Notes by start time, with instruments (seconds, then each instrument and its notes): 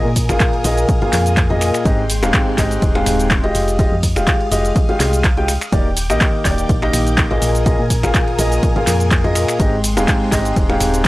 Already playing: string machine A#4 G#5 D#6
0.05 fm bass A#2
0.16 kick, open hi-hat, ride, shaker
0.29 fm bass G#1, upright piano A#2 A#3 F4 G#4 F5, finger snap, closed hi-hat, shaker
0.40 kick, clap, closed hi-hat, ride, shaker
0.53 closed hi-hat
0.64 fm bass A#1, upright piano A#2 A#3 F4 G#4 D#5, open hi-hat, ride, shaker
0.77 closed hi-hat, shaker
0.89 kick, closed hi-hat, ride, shaker
1.02 upright piano A#2 A#3 F4 G#4 F5, closed hi-hat
1.13 fm bass F2, clap, open hi-hat, ride, shaker
1.26 closed hi-hat, shaker
1.37 kick, clap, closed hi-hat, ride, shaker
1.50 upright piano A#2 A#3 F4 G#4 D#5, closed hi-hat
1.61 finger snap, open hi-hat, ride, shaker
1.74 finger snap, closed hi-hat, shaker
1.85 fm bass G#1, upright piano G#2 C4 G4 G#4 D#5, string machine G#3 G5 C6, kick, closed hi-hat, ride, shaker
2.10 open hi-hat, ride, shaker
2.23 fm bass D#1, upright piano G#2 C4 G4 G#4 F5, finger snap, closed hi-hat, shaker
2.34 kick, clap, closed hi-hat, ride, shaker
2.58 fm bass G#1, upright piano G#2 C4 G4 G#4 D#5, kick, clap, open hi-hat, ride, shaker
2.71 closed hi-hat, shaker
2.82 fm bass D#1, kick, closed hi-hat, ride, shaker
2.95 upright piano G#2 C4 G4 G#4 F5, finger snap, closed hi-hat
3.06 fm bass D#1, finger snap, open hi-hat, ride, shaker
3.19 closed hi-hat, shaker
3.31 kick, clap, closed hi-hat, ride, shaker
3.44 upright piano G#3 F4 G4 D#5, closed hi-hat
3.55 fm bass F1, string machine F5 D#6, open hi-hat, ride, shaker
3.68 closed hi-hat, shaker
3.79 upright piano G#3 F4 G4 D#5, kick, closed hi-hat, ride, shaker
3.92 fm bass F2
4.03 kick, open hi-hat, ride, shaker
4.16 fm bass D#1, upright piano G#3 F4 G4 F5, finger snap, closed hi-hat, shaker
4.27 kick, clap, closed hi-hat, ride, shaker
4.41 closed hi-hat
4.51 fm bass F1, upright piano G#3 F4 G4 D#5, open hi-hat, ride, shaker
4.65 closed hi-hat, shaker
4.76 kick, closed hi-hat, ride, shaker
4.89 upright piano G#3 F4 G4 F5, closed hi-hat
5.00 fm bass C2, upright piano G#3 F4 G4 F5, clap, open hi-hat, ride, shaker
5.13 closed hi-hat, shaker
5.24 kick, clap, closed hi-hat, ride, shaker
5.37 upright piano G#3 F4 G4 G5, closed hi-hat
5.48 finger snap, open hi-hat, ride, shaker
5.61 finger snap, closed hi-hat, shaker
5.72 fm bass D#1, upright piano D#3 A#3 D#4 G4 D5, string machine G5 D6 G6, kick, closed hi-hat, ride, shaker
5.97 open hi-hat, ride, shaker
6.10 fm bass A#1, upright piano D#3 A#3 D#4 G4 D#5, finger snap, closed hi-hat, shaker
6.21 kick, clap, closed hi-hat, ride, shaker
6.45 fm bass D#1, upright piano D#3 A#3 D#4 G4 D5, kick, clap, open hi-hat, ride, shaker
6.58 closed hi-hat, shaker
6.69 fm bass A#1, kick, closed hi-hat, ride, shaker
6.82 upright piano D#3 A#3 D#4 G4 D#5, finger snap, closed hi-hat
6.93 fm bass A#1, finger snap, open hi-hat, ride, shaker
7.07 closed hi-hat, shaker
7.18 kick, clap, closed hi-hat, ride, shaker
7.31 upright piano A#2 A#3 F4 G#4 D#5, closed hi-hat
7.42 fm bass A#1, string machine A#4 G#5 D#6, open hi-hat, ride, shaker
7.55 closed hi-hat, shaker
7.66 upright piano A#2 A#3 F4 G#4 D#5, kick, closed hi-hat, ride, shaker
7.79 fm bass A#2
7.90 kick, open hi-hat, ride, shaker
8.03 fm bass G#1, upright piano A#2 A#3 F4 G#4 F5, finger snap, closed hi-hat, shaker
8.14 kick, clap, closed hi-hat, ride, shaker
8.28 closed hi-hat
8.39 fm bass A#1, upright piano A#2 A#3 F4 G#4 D#5, open hi-hat, ride, shaker
8.52 closed hi-hat, shaker
8.63 kick, closed hi-hat, ride, shaker
8.76 upright piano A#2 A#3 F4 G#4 F5, closed hi-hat
8.87 fm bass F2, clap, open hi-hat, ride, shaker
9.00 closed hi-hat, shaker
9.11 kick, clap, closed hi-hat, ride, shaker
9.24 upright piano A#2 A#3 F4 G#4 D#5, closed hi-hat
9.35 finger snap, open hi-hat, ride, shaker
9.48 finger snap, closed hi-hat, shaker
9.60 fm bass G#1, upright piano G#2 C4 G4 G#4 D#5, string machine G#3 G5 C6, kick, closed hi-hat, ride, shaker
9.84 open hi-hat, ride, shaker
9.97 fm bass D#1, upright piano G#2 C4 G4 G#4 F5, finger snap, closed hi-hat, shaker
10.08 kick, clap, closed hi-hat, ride, shaker
10.32 fm bass G#1, upright piano G#2 C4 G4 G#4 D#5, kick, clap, open hi-hat, ride, shaker
10.45 closed hi-hat, shaker
10.56 fm bass D#1, kick, closed hi-hat, ride, shaker
10.69 upright piano G#2 C4 G4 G#4 F5, finger snap, closed hi-hat
10.80 fm bass D#1, finger snap, open hi-hat, ride, shaker
10.94 closed hi-hat, shaker
11.05 kick, closed hi-hat, ride